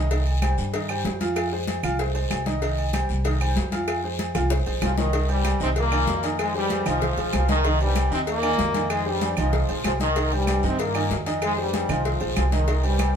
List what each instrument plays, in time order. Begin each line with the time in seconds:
Already playing: upright bass C2
0.10 upright piano D#3 D#4 D#5, cowbell, high conga, low agogo, long guiro
0.26 high conga, low agogo
0.42 upright piano G3 G4 C5, cowbell, high conga, low timbale, low agogo, short guiro, claves
0.57 upright bass G2, high conga, short guiro
0.73 upright piano D#3 D#4 D#5, cowbell, high conga, low agogo, long guiro
0.89 upright piano G3 G4 C5, high conga, low agogo, claves
1.05 upright bass F2, cowbell, high conga, low timbale, short guiro
1.21 upright piano F3 F4 F5, cowbell, high conga, low agogo, short guiro
1.36 cowbell, high conga, low agogo, long guiro, claves
1.52 upright piano G#3 G#4 C5, high conga
1.67 cowbell, high conga, low timbale, low agogo, short guiro
1.83 upright bass C2, upright piano F3 F4 F5, high conga, low conga, low agogo, short guiro, claves
1.99 upright piano G#3 G#4 C5, cowbell, high conga, long guiro
2.14 upright piano G#3 G#4 C5, high conga, low agogo
2.30 upright bass C2, cowbell, high conga, low timbale, low agogo, short guiro, claves
2.46 upright piano D#3 D#4 D#5, cowbell, high conga, short guiro
2.62 upright piano D#3 D#4 D#5, cowbell, low agogo, long guiro
2.78 high conga, low agogo
2.93 upright piano G3 G4 C5, cowbell, high conga, low timbale, low agogo, short guiro, claves
3.09 upright bass C2, high conga, short guiro
3.25 upright piano D#3 D#4 D#5, cowbell, high conga, low agogo, long guiro
3.40 upright piano G3 G4 C5, high conga, low agogo, claves
3.56 upright bass F2, cowbell, high conga, low timbale, short guiro
3.72 upright piano F3 F4 F5, cowbell, high conga, low agogo, short guiro
3.88 cowbell, high conga, low agogo, long guiro, claves
4.04 upright piano G#3 G#4 C5, high conga
4.19 cowbell, high conga, low timbale, low agogo, short guiro
4.35 upright bass C2, upright piano F3 F4 F5, high bongo, high conga, low conga, low agogo, short guiro, claves
4.50 upright piano G#3 G#4 C5, cowbell, low bongo, long guiro
4.66 upright bass A#1, upright piano G#3 G#4 C5, high conga, low agogo
4.82 upright bass C2, trombone section F3 F4, cowbell, low bongo, high conga, low timbale, low agogo, short guiro, claves
4.97 upright piano D#3 D#4 D#5, trombone section D#3 D#4, cowbell, low bongo, high conga, short guiro
5.13 upright piano D#3 D#4 D#5, cowbell, low agogo, long guiro
5.29 trombone section G2 G3, upright piano G3 G4 C5, high conga, low agogo
5.44 cowbell, high conga, low timbale, low agogo, short guiro, claves
5.60 upright bass C2, trombone section C3 C4, upright piano D#3 D#4 D#5, high conga, short guiro
5.76 trombone section A#2 A#3, cowbell, high conga, low agogo, long guiro
5.92 upright piano D#3 D#4 D#5, high conga, low agogo, claves
6.07 upright bass F2, cowbell, high conga, low timbale, short guiro
6.23 upright piano D#3 D#4 D#5, cowbell, low agogo, short guiro
6.39 trombone section G#2 G#3, cowbell, high conga, low agogo, long guiro, claves
6.55 trombone section G2 G3, upright piano G#3 G#4 C5, high conga
6.70 upright piano G#3 G#4 C5, cowbell, high conga, low timbale, low agogo, short guiro
6.86 upright bass C2, upright piano D#3 D#4 D#5, trombone section F3 F4, high conga, low conga, low agogo, short guiro, claves
7.01 cowbell, high conga, low conga, long guiro
7.17 upright bass A#1, upright piano G#3 G#4 C5, high conga, low agogo
7.33 upright bass C2, trombone section F3 F4, cowbell, high conga, low timbale, low agogo, short guiro, claves
7.48 upright piano D#3 D#4 D#5, trombone section D#3 D#4, cowbell, high conga, short guiro
7.64 upright piano D#3 D#4 D#5, cowbell, low agogo, long guiro
7.80 trombone section G2 G3, upright piano G3 G4 C5, high conga, low agogo
7.96 cowbell, high conga, low timbale, low agogo, short guiro, claves
8.11 upright bass D#2, trombone section C3 C4, upright piano D#3 D#4 D#5, high conga, short guiro
8.27 trombone section A#2 A#3, cowbell, high conga, low agogo, long guiro
8.43 upright piano D#3 D#4 D#5, high conga, low agogo, claves
8.58 upright bass F2, cowbell, high conga, low timbale, short guiro
8.74 upright piano D#3 D#4 D#5, cowbell, high conga, low agogo, short guiro
8.90 trombone section G#2 G#3, cowbell, high conga, low agogo, long guiro, claves
9.06 trombone section G2 G3, upright piano G#3 G#4 C5, high conga
9.21 upright piano G#3 G#4 C5, cowbell, high conga, low timbale, low agogo, short guiro
9.37 upright bass C2, upright piano D#3 D#4 D#5, trombone section F3 F4, high conga, low conga, low agogo, short guiro, claves
9.53 cowbell, high conga, low conga, long guiro
9.69 upright bass A#1, upright piano G#3 G#4 C5, high conga, low agogo
9.84 upright bass C2, trombone section F3 F4, cowbell, high conga, low timbale, low agogo, short guiro, claves
10.00 upright piano D#3 D#4 D#5, trombone section D#3 D#4, cowbell, high conga, short guiro
10.16 upright piano D#3 D#4 D#5, cowbell, high conga, low agogo, long guiro
10.32 trombone section G2 G3, upright piano G3 G4 C5, high conga, low agogo
10.47 cowbell, high conga, low timbale, low agogo, short guiro, claves
10.63 upright bass G2, trombone section C3 C4, upright piano D#3 D#4 D#5, short guiro
10.79 trombone section A#2 A#3, cowbell, high conga, low agogo, long guiro
10.95 upright piano D#3 D#4 D#5, high conga, low agogo, claves
11.10 upright bass F2, cowbell, high conga, low timbale, short guiro
11.26 upright piano D#3 D#4 D#5, cowbell, low agogo, short guiro
11.42 trombone section G#2 G#3, cowbell, high conga, low agogo, long guiro, claves
11.58 trombone section G2 G3, upright piano G#3 G#4 C5, high conga
11.73 upright piano G#3 G#4 C5, cowbell, high conga, low timbale, low agogo, short guiro
11.89 upright bass C2, upright piano D#3 D#4 D#5, trombone section F3 F4, high conga, low conga, low agogo, short guiro, claves
12.05 cowbell, high conga, long guiro
12.21 upright bass A#1, upright piano G#3 G#4 C5, high conga, low agogo
12.36 upright bass C2, trombone section F3 F4, cowbell, high conga, low timbale, low agogo, short guiro, claves
12.52 upright piano D#3 D#4 D#5, trombone section D#3 D#4, cowbell, high conga, short guiro
12.68 upright piano D#3 D#4 D#5, cowbell, low agogo, long guiro
12.83 trombone section G2 G3, upright piano G3 G4 C5, high conga, low agogo
12.99 cowbell, high conga, low timbale, low agogo, short guiro, claves